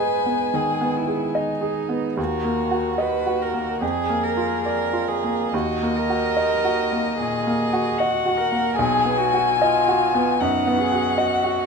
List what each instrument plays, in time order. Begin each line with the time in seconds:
Already playing: grand piano G#2 B3 D#5, cello B4, violin G#5
0.00 grand piano G#4
0.26 grand piano B3
0.54 grand piano D#3, cello G#4
0.81 grand piano B3
0.97 cello E4
1.07 grand piano G#4
1.35 cello D#4, grand piano D#5
1.61 grand piano G#4
1.89 grand piano B3
2.17 grand piano D#2, cello F#4, violin A#4
2.45 grand piano A#3
2.71 grand piano F#4
2.98 violin F#4, cello B4, grand piano D#5
3.26 grand piano F#4
3.42 cello A#4
3.54 grand piano A#3
3.81 grand piano F2, cello G#4, violin G#4
4.10 grand piano A#3
4.23 cello A#4
4.37 grand piano F4
4.65 cello A#4, grand piano D5
4.93 grand piano F4
5.07 cello G#4, violin A#4
5.24 grand piano A#3
5.53 grand piano D#2, cello F#4, violin D#5
5.82 grand piano A#3
5.96 cello A#4
6.09 grand piano F#4
6.37 grand piano D#5
6.65 grand piano F#4
6.92 grand piano A#3
7.19 grand piano A#2, cello G#4
7.47 grand piano A#3
7.73 grand piano F#4
7.98 cello F#4, grand piano D#5, violin F#5
8.26 grand piano F#4
8.37 cello A#4
8.52 grand piano A#3
8.76 grand piano B1, cello G#4, violin G#5
9.05 grand piano B3
9.18 cello F#4
9.34 grand piano F#4
9.61 cello F4, grand piano D#5
9.88 grand piano F#4
10.15 grand piano B3
10.40 grand piano F#2, cello D#4, violin F#5
10.67 grand piano B3
10.79 cello G#4
10.92 grand piano F#4
11.18 cello F#4, grand piano D#5
11.44 grand piano F#4